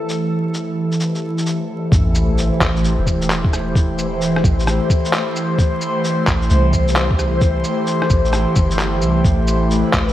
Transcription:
Already playing: analog synth pad E3 A3 G4 C5, synth texture A4
0.09 shaker
0.54 shaker
0.92 shaker
1.00 shaker
1.15 shaker
1.38 shaker
1.46 shaker
1.92 808-style bass A1, kick, sub drop, shaker
2.07 analog synth pad A3
2.15 cabasa
2.24 analog synth pad C5
2.35 analog synth pad G4, shaker
2.61 808-style bass A1, kick, clap, cabasa
2.76 shaker
2.84 shaker
2.99 808-style bass E1
3.07 kick, cabasa
3.22 shaker
3.30 clap, shaker
3.44 kick
3.53 cross-stick, cabasa
3.75 kick, shaker
3.99 cabasa
4.22 shaker
4.36 cross-stick
4.44 808-style bass A1, kick, cabasa
4.59 shaker
4.67 cross-stick, shaker
4.90 kick, cabasa
5.05 shaker
5.13 clap, shaker
5.36 cabasa
5.59 kick, shaker
5.82 cabasa
6.05 shaker
6.27 808-style bass A1, kick, clap, cabasa
6.42 shaker
6.50 808-style bass C2, shaker
6.73 kick, cabasa
6.88 shaker
6.96 clap, shaker
7.11 kick
7.19 cross-stick, cabasa
7.41 kick, shaker
7.64 cabasa
7.87 shaker
8.02 cross-stick
8.10 808-style bass A1, kick, cabasa
8.25 shaker
8.33 cross-stick, shaker
8.56 808-style bass G1, kick, cabasa
8.71 shaker
8.79 clap, shaker
9.02 808-style bass C2, cabasa
9.25 808-style bass A1, kick, shaker
9.48 cabasa
9.57 analog synth pad B4
9.71 shaker
9.93 808-style bass A1, kick, clap, cabasa
10.08 shaker

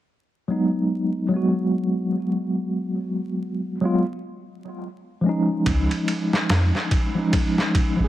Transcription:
0.48 tine electric piano F#3 G#3 B3 D#4
1.29 tine electric piano F#3 G#3
1.34 tine electric piano B3 F#4
3.81 tine electric piano F#3 G#3 B3
3.85 tine electric piano F4
5.21 tine electric piano F3 G#3
5.26 tine electric piano C#4 D#4
5.66 808-style bass C#2, kick, ride
5.91 ride
6.08 ride
6.33 snare
6.50 808-style bass F2, snare, ride
6.75 snare
6.91 kick, ride
7.15 tine electric piano F3 G#3 C#4 D#4
7.33 kick, ride
7.58 snare
7.75 kick, ride
7.96 808-style bass G#1, tine electric piano F3 G#3
8.02 tine electric piano C#4 G#4

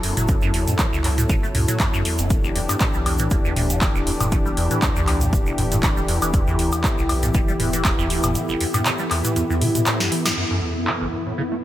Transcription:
Already playing: sub bass E1, analog synth pad F#3 E4 A4, ambient pad B3 E4 A4 C#5
0.03 acid bass F#2, open hi-hat
0.17 sub bass F#1, acid bass F#3, closed hi-hat, mid tom, shaker
0.28 acid bass F#2, kick, closed hi-hat, shaker
0.41 acid bass F#2, shaker
0.54 sub bass F#1, acid bass E2, open hi-hat
0.67 acid bass F#2, closed hi-hat, mid tom, shaker
0.79 acid bass F#3, kick, clap, closed hi-hat, shaker
0.93 acid bass F#1, sub bass C#2, shaker
1.04 acid bass F#2, clap, open hi-hat
1.18 acid bass A2, closed hi-hat, mid tom, shaker
1.29 sub bass F#1, acid bass C#3, kick, closed hi-hat, shaker
1.43 acid bass A3, shaker
1.55 sub bass C#2, acid bass F#2, mid tom, open hi-hat
1.68 acid bass F#3, closed hi-hat, mid tom, shaker
1.80 acid bass F#2, kick, clap, closed hi-hat, shaker
1.93 sub bass F#1, acid bass F#2, shaker
2.05 acid bass E2, open hi-hat
2.18 sub bass E1, acid bass F#2, closed hi-hat, shaker
2.30 acid bass E3, analog synth pad E3 D4 G4, ambient pad B3, kick, closed hi-hat, shaker
2.41 acid bass E1, ambient pad E4, shaker
2.56 sub bass E1, acid bass E2, open hi-hat
2.69 acid bass G2, closed hi-hat, high woodblock, shaker
2.80 acid bass B2, kick, clap, closed hi-hat, shaker
2.94 sub bass B1, acid bass G3, shaker
3.06 acid bass E2, open hi-hat, high woodblock
3.18 acid bass E3, closed hi-hat, mid tom, shaker
3.31 sub bass E1, acid bass E2, ambient pad D5, kick, closed hi-hat, shaker
3.45 acid bass E2, shaker
3.56 sub bass E1, acid bass D2, mid tom, open hi-hat
3.70 acid bass E2, closed hi-hat, shaker
3.81 acid bass E3, kick, clap, closed hi-hat, shaker
3.95 sub bass D1, acid bass E1, shaker
4.07 acid bass E2, open hi-hat
4.20 sub bass E1, acid bass G2, closed hi-hat, mid tom, high woodblock, shaker
4.32 acid bass B2, kick, closed hi-hat, shaker
4.46 acid bass G3, shaker
4.57 sub bass E1, acid bass E2, open hi-hat
4.71 acid bass E3, closed hi-hat, mid tom, shaker
4.82 acid bass E2, kick, clap, closed hi-hat, shaker
4.96 sub bass B1, acid bass E2, shaker
5.07 acid bass D2, clap, open hi-hat, high woodblock
5.21 acid bass E2, closed hi-hat, mid tom, shaker
5.33 sub bass E1, acid bass E3, kick, closed hi-hat, shaker
5.46 acid bass E1, shaker
5.58 sub bass E1, acid bass E2, mid tom, open hi-hat
5.72 acid bass G2, closed hi-hat, mid tom, shaker
5.83 acid bass B2, kick, clap, closed hi-hat, shaker
5.97 sub bass D1, acid bass G3, shaker
6.08 acid bass E2, open hi-hat
6.22 sub bass E1, acid bass E3, closed hi-hat, high woodblock, shaker
6.34 acid bass E2, analog synth pad E4, kick, closed hi-hat, shaker
6.47 acid bass E2, shaker
6.59 sub bass E1, acid bass D2, open hi-hat
6.72 acid bass E2, closed hi-hat, high woodblock, shaker
6.84 acid bass E3, kick, clap, closed hi-hat, shaker
6.98 acid bass E1, sub bass B1, ambient pad E5, shaker
7.09 acid bass E2, open hi-hat, high woodblock
7.23 acid bass G2, closed hi-hat, mid tom, shaker
7.34 sub bass E1, acid bass B2, kick, closed hi-hat, shaker
7.48 acid bass G3, shaker
7.60 sub bass E1, acid bass E2, mid tom, open hi-hat
7.73 acid bass E3, closed hi-hat, shaker
7.85 acid bass E2, kick, clap, closed hi-hat, shaker
7.99 sub bass D1, acid bass E2, shaker
8.10 acid bass D2, open hi-hat
8.23 sub bass E1, acid bass E2, closed hi-hat, mid tom, high woodblock, shaker
8.35 acid bass E3, closed hi-hat, shaker
8.49 acid bass E1, shaker
8.61 acid bass E2, open hi-hat
8.74 acid bass G2, closed hi-hat, mid tom, high woodblock, shaker
8.86 acid bass B2, clap, closed hi-hat, shaker
8.98 acid bass G3, shaker
9.11 acid bass E2, clap, open hi-hat, high woodblock
9.24 acid bass E3, closed hi-hat, mid tom, shaker
9.36 acid bass E2, closed hi-hat, shaker
9.50 acid bass E2, shaker
9.61 acid bass E3, mid tom, open hi-hat
9.75 acid bass B2, closed hi-hat, mid tom, shaker
9.86 acid bass A2, clap, closed hi-hat, shaker
10.00 acid bass F#2, snare, shaker
10.12 acid bass E3, open hi-hat
10.25 acid bass F#2, snare, closed hi-hat, high woodblock, shaker
10.37 acid bass F#2, analog synth pad F#2 E3 A4, ambient pad F#3
10.51 acid bass F#2
10.62 acid bass E2
10.76 acid bass F#2
10.87 acid bass F#3, clap
10.99 acid bass F#1, ambient pad A4 C#5
11.13 acid bass F#2
11.26 acid bass A2
11.38 acid bass C#3
11.52 acid bass A3

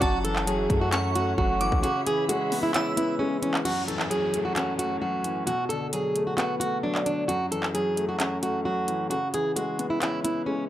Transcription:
Already playing: string section F#4 F#5
0.01 808-style bass F#1, grand piano F#2, steel-string acoustic guitar F#4, string section C#5 E5, synth bell A5, kick, closed hi-hat
0.24 grand piano E3, steel-string acoustic guitar A4, closed hi-hat
0.36 clap
0.47 grand piano F#3, steel-string acoustic guitar G#4, closed hi-hat
0.69 808-style bass F#2, grand piano A3, kick, closed hi-hat
0.81 steel-string acoustic guitar F#4
0.92 grand piano C#4, steel-string acoustic guitar F#4, synth bell C#6, clap, closed hi-hat
1.15 grand piano A3, steel-string acoustic guitar F#4, closed hi-hat
1.38 808-style bass F#1, grand piano F#3, steel-string acoustic guitar F#4, kick
1.61 grand piano E3, synth bell D6, closed hi-hat
1.72 808-style bass C#2, kick
1.83 grand piano C#3, steel-string acoustic guitar F#4, string section G#4 E5 B5, closed hi-hat
2.06 grand piano E3, steel-string acoustic guitar G#4, closed hi-hat
2.29 grand piano G#3, steel-string acoustic guitar F#4, closed hi-hat
2.52 grand piano B3, open hi-hat
2.63 steel-string acoustic guitar E4
2.74 grand piano C#4, steel-string acoustic guitar E4, synth bell E6, clap, closed hi-hat
2.97 grand piano B3, steel-string acoustic guitar E4, closed hi-hat
3.19 grand piano G#3, steel-string acoustic guitar C#4
3.42 grand piano E3, steel-string acoustic guitar C#4, closed hi-hat
3.54 clap
3.65 grand piano F#2, steel-string acoustic guitar F#4, closed hi-hat, crash, downlifter
3.88 grand piano E3, steel-string acoustic guitar A4, closed hi-hat
3.99 clap
4.10 grand piano F#3, steel-string acoustic guitar G#4, closed hi-hat
4.34 grand piano A3, closed hi-hat
4.45 steel-string acoustic guitar F#4
4.56 grand piano C#4, steel-string acoustic guitar F#4, clap, closed hi-hat
4.79 grand piano A3, steel-string acoustic guitar F#4, closed hi-hat
5.01 grand piano F#3, steel-string acoustic guitar F#4
5.24 grand piano E3, closed hi-hat
5.47 grand piano B2, steel-string acoustic guitar F#4, closed hi-hat
5.69 grand piano D3, steel-string acoustic guitar A4, closed hi-hat
5.93 grand piano F#3, steel-string acoustic guitar G#4, closed hi-hat
6.15 grand piano A3, closed hi-hat
6.27 steel-string acoustic guitar F#4
6.37 grand piano B3, steel-string acoustic guitar F#4, clap, closed hi-hat
6.60 grand piano A3, steel-string acoustic guitar F#4, closed hi-hat
6.83 grand piano F#3, steel-string acoustic guitar D4
6.95 clap
7.06 grand piano D3, steel-string acoustic guitar D4, closed hi-hat
7.28 grand piano F#2, steel-string acoustic guitar F#4, closed hi-hat
7.51 grand piano E3, steel-string acoustic guitar A4, closed hi-hat
7.63 clap
7.74 grand piano F#3, steel-string acoustic guitar G#4, closed hi-hat
7.97 grand piano A3, closed hi-hat
8.09 steel-string acoustic guitar F#4
8.20 grand piano C#4, steel-string acoustic guitar F#4, clap, closed hi-hat
8.42 grand piano A3, steel-string acoustic guitar F#4, closed hi-hat
8.65 grand piano F#3, steel-string acoustic guitar F#4
8.88 grand piano E3, closed hi-hat
9.10 grand piano C#3, steel-string acoustic guitar F#4, closed hi-hat
9.33 grand piano E3, steel-string acoustic guitar G#4, closed hi-hat
9.56 grand piano G#3, steel-string acoustic guitar F#4, closed hi-hat
9.79 grand piano B3, closed hi-hat
9.90 steel-string acoustic guitar E4
10.02 grand piano C#4, steel-string acoustic guitar E4, clap, closed hi-hat
10.24 grand piano B3, steel-string acoustic guitar E4, closed hi-hat
10.46 grand piano G#3, steel-string acoustic guitar C#4

